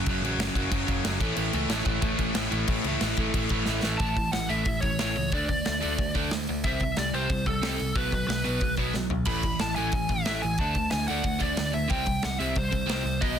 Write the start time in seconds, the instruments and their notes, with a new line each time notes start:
0.06 picked electric bass F#1, overdriven electric guitar F#2 C#3 F#3, kick, crash
0.20 picked electric bass A1
0.24 overdriven electric guitar F#2 C#3 F#3, crash
0.36 picked electric bass F#1, overdriven electric guitar F#2 C#3, snare, crash
0.41 overdriven electric guitar F#3
0.55 picked electric bass F#1, overdriven electric guitar F#2 C#3 F#3, kick, crash
0.71 picked electric bass F#1, overdriven electric guitar F#2 C#3 F#3, kick, crash
0.87 picked electric bass F#1, overdriven electric guitar F#2 C#3 F#3, kick, crash
1.04 picked electric bass F#1, overdriven electric guitar F#2 C#3 F#3, snare, crash
1.20 picked electric bass A1, overdriven electric guitar A2 E3 A3, kick, crash
1.36 picked electric bass A1, overdriven electric guitar A2 E3 A3, crash
1.53 picked electric bass C#2, overdriven electric guitar A2 E3 A3, crash
1.69 picked electric bass A1, overdriven electric guitar A2 E3 A3, snare, crash
1.85 picked electric bass A1, overdriven electric guitar A2 E3 A3, kick, crash
2.02 picked electric bass A1, overdriven electric guitar A2 E3 A3, kick, crash
2.17 picked electric bass A1, overdriven electric guitar A2 E3 A3, kick, crash
2.34 picked electric bass A1, overdriven electric guitar A2 E3 A3, snare, crash
2.50 picked electric bass A1, overdriven electric guitar A2 E3 A3, crash
2.67 picked electric bass A1, overdriven electric guitar A2 E3 A3, kick, crash
2.84 picked electric bass C#2, overdriven electric guitar A2 E3 A3, crash
3.01 picked electric bass A1, overdriven electric guitar A2 E3 A3, snare, crash
3.17 picked electric bass A1, overdriven electric guitar A2 E3 A3, kick, crash
3.34 picked electric bass A1, overdriven electric guitar A2 E3 A3, kick, crash
3.49 picked electric bass A1, overdriven electric guitar A2 E3 A3, kick, crash
3.66 picked electric bass A1, overdriven electric guitar A2 E3 A3, snare
3.83 picked electric bass A1, overdriven electric guitar A2 E3 A3, snare
3.97 picked electric bass A1, overdriven electric guitar A2 E3 A3, lead electric guitar A5, kick, open hi-hat
4.16 overdriven electric guitar A2 E3, kick, open hi-hat
4.32 picked electric bass A1, overdriven electric guitar A2 E3, lead electric guitar F#5, snare, open hi-hat
4.49 picked electric bass A1, overdriven electric guitar A2 E3 A3, lead electric guitar E5, open hi-hat
4.65 picked electric bass A1, overdriven electric guitar A2 E3, kick, open hi-hat
4.81 picked electric bass A1, overdriven electric guitar A2 E3, lead electric guitar C#5, kick, open hi-hat
4.99 picked electric bass A1, overdriven electric guitar A2 E3 A3, snare, open hi-hat
5.16 picked electric bass C#2, overdriven electric guitar A2 E3, open hi-hat
5.32 picked electric bass D2, overdriven electric guitar D3 A3 D4, lead electric guitar D5, kick, open hi-hat
5.48 overdriven electric guitar D3 A3, lead electric guitar D5, kick, open hi-hat
5.65 picked electric bass D2, overdriven electric guitar D3 A3, lead electric guitar D5, snare, open hi-hat
5.81 picked electric bass D2, overdriven electric guitar D3 A3 D4, open hi-hat
5.98 picked electric bass D2, overdriven electric guitar D3 A3, kick, open hi-hat
6.15 picked electric bass D2, overdriven electric guitar D3 A3 D4, kick, open hi-hat
6.31 picked electric bass D2, overdriven electric guitar D3 A3, snare, open hi-hat
6.47 picked electric bass D2, overdriven electric guitar D3 A3, open hi-hat
6.64 picked electric bass C2, overdriven electric guitar C3 G3 C4, lead electric guitar E5, kick, open hi-hat
6.80 overdriven electric guitar C3 G3, kick, open hi-hat
6.97 picked electric bass C2, overdriven electric guitar C3 G3, lead electric guitar D5, snare, open hi-hat
7.13 picked electric bass C2, overdriven electric guitar C3 G3 C4, lead electric guitar C5, open hi-hat
7.29 picked electric bass C2, overdriven electric guitar C3 G3, kick, open hi-hat
7.46 picked electric bass C2, overdriven electric guitar C3 G3, lead electric guitar A4, kick, open hi-hat
7.62 picked electric bass C2, overdriven electric guitar C3 G3 C4, snare, open hi-hat
7.80 picked electric bass C2, overdriven electric guitar C3 G3, open hi-hat
7.95 picked electric bass B1, overdriven electric guitar B2 F#3 B3, lead electric guitar B4, kick, open hi-hat
8.12 overdriven electric guitar B2 F#3, lead electric guitar B4, kick, open hi-hat
8.27 picked electric bass B1, overdriven electric guitar B2 F#3, lead electric guitar B4, snare, open hi-hat
8.44 picked electric bass B1, overdriven electric guitar B2 F#3 B3, open hi-hat
8.61 picked electric bass B1, overdriven electric guitar B2 F#3, kick, open hi-hat
8.77 picked electric bass B1, overdriven electric guitar B2 F#3 B3, kick, open hi-hat
8.94 picked electric bass B1, overdriven electric guitar B2 F#3, snare
9.10 picked electric bass B1, overdriven electric guitar B2 F#3, floor tom
9.25 picked electric bass A1, overdriven electric guitar A2 E3 A3, lead electric guitar B5, kick, open hi-hat, crash
9.43 overdriven electric guitar A2 E3, kick, open hi-hat
9.59 picked electric bass A1, overdriven electric guitar A2 E3, lead electric guitar A5, snare, open hi-hat
9.76 picked electric bass A1, overdriven electric guitar A2 E3 A3, lead electric guitar G#5, open hi-hat
9.92 picked electric bass A1, overdriven electric guitar A2 E3, kick, open hi-hat
10.09 picked electric bass A1, overdriven electric guitar A2 E3, lead electric guitar E5, kick, open hi-hat
10.26 picked electric bass A1, overdriven electric guitar A2 E3 A3, snare, open hi-hat
10.42 picked electric bass A1, overdriven electric guitar A2 E3, lead electric guitar G#5, open hi-hat
10.58 picked electric bass D2, overdriven electric guitar D3 A3 D4, lead electric guitar A5, kick, open hi-hat
10.75 overdriven electric guitar D3 A3, kick, open hi-hat
10.91 picked electric bass D2, overdriven electric guitar D3 A3, lead electric guitar G#5, snare, open hi-hat
11.08 picked electric bass D2, overdriven electric guitar D3 A3 D4, lead electric guitar F#5, open hi-hat
11.24 picked electric bass D2, overdriven electric guitar D3 A3, kick, open hi-hat
11.39 picked electric bass D2, overdriven electric guitar D3 A3 D4, lead electric guitar D5, kick, open hi-hat
11.56 picked electric bass D2, overdriven electric guitar D3 A3, snare, open hi-hat
11.73 picked electric bass D2, overdriven electric guitar D3 A3, lead electric guitar E5, open hi-hat
11.89 picked electric bass C2, overdriven electric guitar C3 G3 C4, lead electric guitar G5, kick, open hi-hat
12.06 overdriven electric guitar C3 G3, kick, open hi-hat
12.23 picked electric bass C2, overdriven electric guitar C3 G3, lead electric guitar F#5, snare, open hi-hat
12.39 picked electric bass C2, overdriven electric guitar C3 G3 C4, lead electric guitar E5, open hi-hat
12.56 picked electric bass C2, overdriven electric guitar C3 G3, lead electric guitar C5, kick, open hi-hat
12.72 picked electric bass C2, overdriven electric guitar C3 G3, kick, open hi-hat
12.87 picked electric bass C2, overdriven electric guitar C3 G3 C4, snare, open hi-hat
13.05 picked electric bass C2, overdriven electric guitar C3 G3, open hi-hat
13.21 picked electric bass B1, overdriven electric guitar B2 F#3 B3, lead electric guitar D#5, kick, open hi-hat